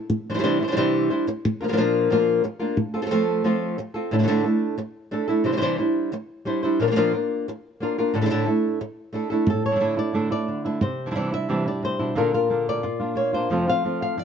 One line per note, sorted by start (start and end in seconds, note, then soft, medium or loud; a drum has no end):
0.10 muted nylon-string guitar stroke medium
0.30 0.33 E3 soft
0.30 0.33 G3 soft
0.30 0.33 D4 soft
0.30 0.34 E4 medium
0.30 0.34 C5 medium
0.34 0.38 E3 medium
0.34 0.37 G3 medium
0.34 0.38 D4 medium
0.34 0.38 E4 medium
0.34 0.39 C5 medium
0.39 0.42 E3 medium
0.39 0.43 G3 medium
0.39 0.43 D4 medium
0.39 0.43 E4 medium
0.39 0.42 C5 medium
0.43 0.59 C3 medium
0.43 0.59 E3 medium
0.43 0.59 G3 medium
0.43 0.59 D4 medium
0.43 0.59 E4 medium
0.43 0.58 C5 medium
0.60 0.66 E3 medium
0.60 0.63 G3 soft
0.60 0.63 D4 soft
0.60 0.62 E4 soft
0.60 0.63 C5 medium
0.64 0.70 E3 medium
0.64 0.71 G3 medium
0.64 0.71 D4 medium
0.64 0.67 C5 medium
0.68 0.75 E3 medium
0.68 0.76 G3 medium
0.68 0.71 E4 medium
0.68 0.71 C5 medium
0.72 0.76 D4 medium
0.72 0.76 E4 medium
0.72 0.76 C5 medium
0.77 1.09 C3 medium
0.77 1.09 E3 medium
0.77 1.09 G3 medium
0.77 1.09 D4 medium
0.77 1.09 E4 medium
0.77 1.09 C5 medium
1.10 1.27 G3 soft
1.10 1.26 D4 soft
1.10 1.26 E4 medium
1.10 1.26 C5 medium
1.27 muted nylon-string guitar stroke medium
1.45 muted nylon-string guitar stroke medium
1.61 1.67 F3 medium
1.61 1.65 A#3 soft
1.61 1.64 D4 soft
1.61 1.64 F4 soft
1.61 1.63 A#4 medium
1.61 1.68 A#4 medium
1.68 1.71 F3 medium
1.68 1.72 A#3 medium
1.68 1.72 D4 medium
1.68 1.73 F4 medium
1.68 1.72 A#4 medium
1.73 1.76 F3 medium
1.73 1.77 A#3 medium
1.73 1.76 D4 medium
1.73 1.77 F4 medium
1.73 1.77 A#4 medium
1.77 2.09 A#2 medium
1.77 2.09 F3 medium
1.77 2.10 A#3 medium
1.77 2.10 D4 medium
1.77 2.10 F4 medium
1.77 2.10 A#4 medium
2.10 2.42 A#2 medium
2.10 2.43 F3 medium
2.10 2.43 A#3 medium
2.10 2.43 D4 medium
2.10 2.44 F4 medium
2.10 2.44 A#4 medium
2.44 muted nylon-string guitar stroke medium
2.60 2.77 A#3 soft
2.60 2.77 D4 soft
2.60 2.76 F4 medium
2.60 2.76 A#4 soft
2.77 muted nylon-string guitar stroke medium
2.94 3.01 C4 soft
2.94 3.01 F4 soft
2.94 3.01 A4 medium
3.02 3.04 A3 soft
3.02 3.10 A3 medium
3.02 3.05 C4 soft
3.02 3.06 F4 soft
3.02 3.06 A4 medium
3.07 3.10 C4 medium
3.07 3.10 F4 medium
3.07 3.11 A4 medium
3.11 3.43 F3 medium
3.11 3.43 A3 medium
3.11 3.43 C4 medium
3.11 3.44 F4 medium
3.11 3.44 A4 medium
3.44 3.77 F3 medium
3.44 3.77 A3 medium
3.44 3.77 C4 medium
3.44 3.77 F4 medium
3.44 3.78 A4 medium
3.78 muted nylon-string guitar stroke medium
3.94 4.11 C4 soft
3.94 4.11 F4 medium
3.94 4.10 A4 medium
4.11 4.27 A2 medium
4.11 4.14 D3 medium
4.11 4.14 A3 medium
4.11 4.15 D4 medium
4.11 4.15 E4 medium
4.11 4.15 A4 medium
4.19 4.22 D3 medium
4.19 4.22 A3 medium
4.19 4.23 D4 medium
4.19 4.23 E4 medium
4.19 4.24 A4 medium
4.23 4.26 D3 medium
4.23 4.27 A3 medium
4.23 4.27 D4 medium
4.23 4.27 E4 medium
4.23 4.28 A4 medium
4.28 4.44 A2 medium
4.28 4.44 D3 medium
4.28 4.44 A3 medium
4.28 4.44 D4 medium
4.28 4.43 E4 medium
4.28 4.43 A4 medium
4.44 4.77 A3 soft
4.44 4.78 D4 soft
4.44 4.77 E4 soft
4.44 4.77 A4 soft
4.78 muted nylon-string guitar stroke medium
5.11 5.27 A3 medium
5.11 5.27 D4 medium
5.11 5.28 E4 medium
5.11 5.26 A4 medium
5.28 5.44 A3 soft
5.28 5.44 D4 medium
5.28 5.44 E4 medium
5.28 5.44 A4 medium
5.44 5.60 C3 medium
5.44 5.51 E3 medium
5.44 5.51 G3 medium
5.44 5.51 D4 medium
5.44 5.52 E4 medium
5.44 5.52 C5 medium
5.52 5.56 E3 soft
5.52 5.56 G3 soft
5.52 5.56 D4 medium
5.52 5.57 E4 medium
5.52 5.56 C5 medium
5.57 5.60 E3 medium
5.57 5.61 G3 medium
5.57 5.61 D4 medium
5.57 5.61 E4 medium
5.57 5.61 C5 medium
5.61 5.77 C3 medium
5.61 5.78 E3 medium
5.61 5.78 G3 medium
5.61 5.78 D4 medium
5.61 5.78 E4 medium
5.61 5.77 C5 medium
5.78 6.12 G3 soft
5.78 6.11 D4 soft
5.78 6.11 E4 soft
5.78 6.11 C5 soft
6.12 muted nylon-string guitar stroke medium
6.45 6.61 G3 medium
6.45 6.61 D4 medium
6.45 6.62 E4 medium
6.45 6.62 C5 medium
6.63 6.80 G3 soft
6.63 6.79 D4 medium
6.63 6.79 E4 medium
6.63 6.78 C5 medium
6.80 6.94 A#2 medium
6.80 6.85 F3 medium
6.80 6.86 A#3 medium
6.80 6.86 D4 medium
6.80 6.86 F4 medium
6.80 6.87 A#4 medium
6.87 6.90 F3 soft
6.87 6.91 A#3 medium
6.87 6.91 D4 soft
6.87 6.91 F4 soft
6.87 6.91 A#4 medium
6.91 6.95 F3 medium
6.91 6.95 A#3 medium
6.91 6.95 D4 medium
6.91 6.96 F4 medium
6.91 6.96 A#4 medium
6.95 7.11 A#2 medium
6.95 7.12 F3 medium
6.95 7.12 A#3 medium
6.95 7.12 D4 medium
6.95 7.12 F4 medium
6.95 7.12 A#4 loud
7.13 7.47 A#3 soft
7.13 7.46 D4 soft
7.13 7.46 F4 soft
7.13 7.45 A#4 medium
7.48 muted nylon-string guitar stroke medium
7.80 7.96 A#3 medium
7.80 7.97 D4 medium
7.80 7.97 F4 medium
7.80 7.97 A#4 medium
7.98 8.14 A#3 soft
7.98 8.14 D4 soft
7.98 8.13 F4 medium
7.98 8.13 A#4 medium
8.14 8.29 A2 medium
8.14 8.16 D3 medium
8.14 8.17 A3 medium
8.14 8.17 D4 medium
8.14 8.17 E4 medium
8.14 8.18 A4 medium
8.21 8.25 D3 medium
8.21 8.25 A3 medium
8.21 8.25 D4 medium
8.21 8.26 E4 medium
8.21 8.26 A4 medium
8.26 8.29 D3 medium
8.26 8.30 A3 medium
8.26 8.30 D4 medium
8.26 8.30 E4 medium
8.26 8.30 A4 medium
8.30 8.46 A2 medium
8.30 8.46 D3 medium
8.30 8.46 A3 medium
8.30 8.46 D4 medium
8.30 8.45 E4 medium
8.30 8.44 A4 medium
8.46 8.80 A3 soft
8.46 8.80 D4 soft
8.46 8.79 E4 soft
8.46 8.79 A4 soft
8.81 muted nylon-string guitar stroke medium
9.13 9.29 A3 medium
9.13 9.30 D4 medium
9.13 9.30 E4 medium
9.13 9.29 A4 medium
9.30 9.48 A3 soft
9.30 9.47 D4 medium
9.30 9.47 E4 soft
9.30 9.46 A4 medium
9.46 10.48 A2 medium
9.46 9.65 A4 medium
9.46 muted nylon-string guitar stroke medium
9.66 9.98 C#5 medium
9.71 9.74 D3 soft
9.71 9.74 A3 soft
9.71 9.75 D4 soft
9.71 9.76 E4 soft
9.76 9.79 D3 soft
9.76 9.79 A3 soft
9.76 9.80 D4 soft
9.76 9.80 E4 soft
9.80 9.96 A2 soft
9.80 9.97 D3 soft
9.80 9.97 A3 soft
9.80 9.96 D4 soft
9.80 9.96 E4 medium
9.97 10.13 A3 soft
9.97 10.14 D4 soft
9.97 10.13 E4 soft
9.97 10.31 D5 medium
10.13 10.30 A2 medium
10.13 10.30 D3 medium
10.13 10.30 A3 medium
10.13 10.30 D4 medium
10.13 10.29 E4 medium
10.30 10.64 A3 soft
10.30 10.64 D4 soft
10.30 10.64 E4 soft
10.30 10.65 D5 medium
10.48 10.82 D3 soft
10.65 10.82 A3 soft
10.65 10.81 D4 soft
10.65 10.81 E4 soft
10.65 10.82 E5 medium
10.81 11.81 C3 medium
10.81 11.15 C5 medium
10.81 muted nylon-string guitar stroke medium
11.06 11.10 E3 soft
11.06 11.10 G3 soft
11.06 11.10 D4 soft
11.06 11.10 E4 soft
11.11 11.14 E3 soft
11.11 11.14 G3 soft
11.11 11.15 D4 medium
11.11 11.16 E4 medium
11.15 11.31 C3 soft
11.15 11.31 E3 soft
11.15 11.31 G3 medium
11.15 11.32 D4 medium
11.15 11.31 E4 soft
11.15 11.32 D5 medium
11.32 11.49 G3 soft
11.32 11.49 D4 soft
11.32 11.48 E4 soft
11.32 11.66 E5 medium
11.49 11.65 C3 medium
11.49 11.65 E3 medium
11.49 11.65 G3 medium
11.49 11.65 D4 medium
11.49 11.65 E4 medium
11.49 12.14 G4 soft
11.66 11.99 G3 soft
11.66 11.99 D4 soft
11.66 11.98 E4 soft
11.66 11.83 D5 medium
11.82 11.99 C3 soft
11.82 12.17 C5 medium
11.99 12.16 B2 soft
11.99 12.15 G3 soft
11.99 12.15 D4 soft
11.99 12.15 E4 soft
12.15 12.32 A#2 medium
12.15 13.48 A#2 medium
12.15 12.32 D3 medium
12.15 12.32 A#3 medium
12.15 12.32 D4 medium
12.15 12.32 F4 medium
12.15 12.33 A#4 medium
12.33 12.49 A#3 soft
12.33 12.49 D4 soft
12.33 12.49 F4 soft
12.33 12.67 A#4 medium
12.50 12.82 D3 soft
12.50 12.83 A#3 soft
12.50 12.83 D4 soft
12.50 12.83 F4 soft
12.69 13.16 D5 medium
12.83 13.48 F4 soft
12.83 muted nylon-string guitar stroke medium
13.00 13.33 A#3 soft
13.00 13.33 D4 soft
13.00 13.32 F4 soft
13.15 13.48 A#3 soft
13.15 13.34 C#5 medium
13.33 13.50 A#3 soft
13.33 13.50 D4 soft
13.33 13.49 F4 soft
13.33 13.68 C5 medium
13.50 13.67 F2 medium
13.50 13.67 C3 medium
13.50 14.24 F3 medium
13.50 13.67 F3 medium
13.50 13.67 A3 medium
13.50 13.66 C4 medium
13.50 13.66 F4 medium
13.67 13.83 F3 soft
13.67 13.84 A3 soft
13.67 13.84 C4 soft
13.67 13.83 F4 soft
13.67 14.01 F5 loud
13.84 14.16 F3 soft
13.84 14.17 A3 soft
13.84 14.17 C4 soft
13.84 14.17 F4 soft
14.02 14.19 F5 medium
14.17 14.24 D5 medium
14.17 muted nylon-string guitar stroke soft